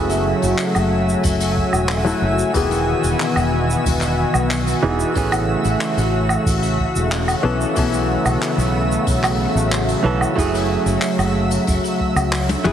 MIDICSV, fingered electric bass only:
0, 0, Header, 1, 2, 480
1, 0, Start_track
1, 0, Tempo, 652174
1, 1874, Time_signature, 4, 2, 24, 8
1, 9367, End_track
2, 0, Start_track
2, 0, Title_t, "Fingered electric bass"
2, 0, Program_c, 0, 33
2, 0, Note_on_c, 0, 30, 94
2, 237, Note_off_c, 0, 30, 0
2, 315, Note_on_c, 0, 30, 84
2, 386, Note_off_c, 0, 30, 0
2, 554, Note_on_c, 0, 30, 90
2, 837, Note_off_c, 0, 30, 0
2, 913, Note_on_c, 0, 30, 82
2, 1197, Note_off_c, 0, 30, 0
2, 1272, Note_on_c, 0, 28, 79
2, 1556, Note_off_c, 0, 28, 0
2, 1629, Note_on_c, 0, 30, 84
2, 1776, Note_off_c, 0, 30, 0
2, 1874, Note_on_c, 0, 28, 85
2, 2157, Note_off_c, 0, 28, 0
2, 2234, Note_on_c, 0, 28, 78
2, 2306, Note_off_c, 0, 28, 0
2, 2473, Note_on_c, 0, 28, 94
2, 2757, Note_off_c, 0, 28, 0
2, 2835, Note_on_c, 0, 28, 81
2, 3118, Note_off_c, 0, 28, 0
2, 3197, Note_on_c, 0, 35, 81
2, 3479, Note_off_c, 0, 35, 0
2, 3557, Note_on_c, 0, 28, 88
2, 3700, Note_off_c, 0, 28, 0
2, 3795, Note_on_c, 0, 33, 95
2, 4078, Note_off_c, 0, 33, 0
2, 4157, Note_on_c, 0, 33, 86
2, 4227, Note_off_c, 0, 33, 0
2, 4395, Note_on_c, 0, 33, 86
2, 4678, Note_off_c, 0, 33, 0
2, 4754, Note_on_c, 0, 33, 79
2, 5037, Note_off_c, 0, 33, 0
2, 5117, Note_on_c, 0, 28, 78
2, 5399, Note_off_c, 0, 28, 0
2, 5475, Note_on_c, 0, 35, 87
2, 5619, Note_off_c, 0, 35, 0
2, 5716, Note_on_c, 0, 35, 89
2, 5998, Note_off_c, 0, 35, 0
2, 6073, Note_on_c, 0, 35, 76
2, 6146, Note_off_c, 0, 35, 0
2, 6312, Note_on_c, 0, 35, 91
2, 6596, Note_off_c, 0, 35, 0
2, 6675, Note_on_c, 0, 35, 81
2, 6958, Note_off_c, 0, 35, 0
2, 7028, Note_on_c, 0, 33, 82
2, 7314, Note_off_c, 0, 33, 0
2, 7392, Note_on_c, 0, 35, 88
2, 7537, Note_off_c, 0, 35, 0
2, 7633, Note_on_c, 0, 30, 90
2, 7917, Note_off_c, 0, 30, 0
2, 7989, Note_on_c, 0, 30, 76
2, 8063, Note_off_c, 0, 30, 0
2, 8230, Note_on_c, 0, 30, 89
2, 8515, Note_off_c, 0, 30, 0
2, 8595, Note_on_c, 0, 30, 74
2, 8666, Note_off_c, 0, 30, 0
2, 8948, Note_on_c, 0, 37, 91
2, 9234, Note_off_c, 0, 37, 0
2, 9309, Note_on_c, 0, 30, 82
2, 9367, Note_off_c, 0, 30, 0
2, 9367, End_track
0, 0, End_of_file